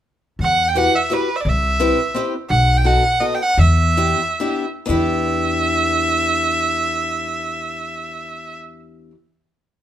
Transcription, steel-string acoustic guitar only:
0.75 0.93 E4 soft
0.75 0.94 F#4 soft
0.75 0.93 G4 soft
0.75 0.94 B4 medium
1.10 1.28 E4 soft
1.10 1.28 F#4 soft
1.10 1.29 G4 soft
1.10 1.29 B4 medium
1.80 1.98 C4 medium
1.80 1.98 E4 medium
1.80 1.98 G4 soft
1.80 1.98 B4 medium
2.15 2.33 C4 medium
2.15 2.33 E4 soft
2.15 2.33 G4 medium
2.15 2.33 B4 medium
2.84 3.03 B3 medium
2.84 3.03 D#4 medium
2.84 3.03 F#4 medium
2.84 3.03 A4 medium
3.20 3.39 B3 soft
3.20 3.39 D#4 soft
3.20 3.39 F#4 soft
3.20 3.39 A4 soft
3.97 4.19 B3 medium
3.97 4.19 D4 medium
3.97 4.19 E4 soft
3.97 4.19 G4 medium
4.40 4.64 B3 soft
4.40 4.65 D4 medium
4.40 4.65 E4 soft
4.40 4.65 G4 medium
4.86 9.10 B3 medium
4.86 9.11 D4 medium
4.86 9.13 E4 medium
4.90 9.14 G4 medium

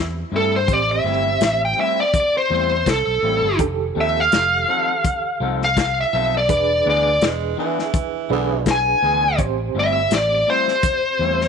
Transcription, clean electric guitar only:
0.32 0.55 A2 medium
0.32 0.56 G3 medium
0.32 0.56 C4 medium
0.32 0.56 E4 medium
1.04 1.28 A2 medium
1.04 1.28 G3 medium
1.04 1.29 C4 medium
1.04 1.29 E4 medium
1.77 2.00 A2 medium
1.77 2.01 G3 medium
1.77 2.01 C4 medium
1.77 2.01 E4 medium
2.50 2.73 A2 medium
2.50 2.73 G3 medium
2.50 2.74 C4 medium
2.50 2.74 E4 medium
3.23 3.46 A2 medium
3.23 3.46 G3 medium
3.23 3.47 C4 medium
3.23 3.47 E4 medium
3.95 4.18 F3 medium
3.95 4.19 C4 medium
3.95 4.19 D#4 medium
3.95 4.20 A4 medium
4.68 4.91 F3 medium
4.68 4.91 C4 medium
4.68 4.92 D#4 medium
4.68 4.92 A4 medium
5.40 5.63 F3 medium
5.40 5.64 C4 medium
5.40 5.64 D#4 medium
5.40 5.65 A4 medium
6.13 6.36 F3 medium
6.13 6.36 C4 medium
6.13 6.37 D#4 medium
6.13 6.37 A4 medium
6.85 7.08 E3 medium
6.85 7.09 B3 medium
6.85 7.09 D4 medium
6.85 7.09 G#4 medium
7.57 7.81 E3 medium
7.57 7.81 B3 medium
7.57 7.81 D4 medium
7.57 7.82 G#4 medium
8.29 8.53 E3 medium
8.29 8.53 B3 medium
8.29 8.54 D4 medium
8.29 8.54 G#4 medium
9.02 9.25 E3 medium
9.02 9.26 B3 medium
9.02 9.26 D4 medium
9.02 9.26 G#4 medium
9.75 9.98 A2 medium
9.75 9.98 G3 medium
9.75 9.99 C4 medium
9.75 9.99 E4 medium
10.47 10.70 A2 medium
10.47 10.71 G3 medium
10.47 10.71 C4 medium
10.47 10.71 E4 medium
11.19 11.43 A2 medium
11.19 11.43 G3 medium
11.19 11.44 C4 medium
11.19 11.44 E4 medium

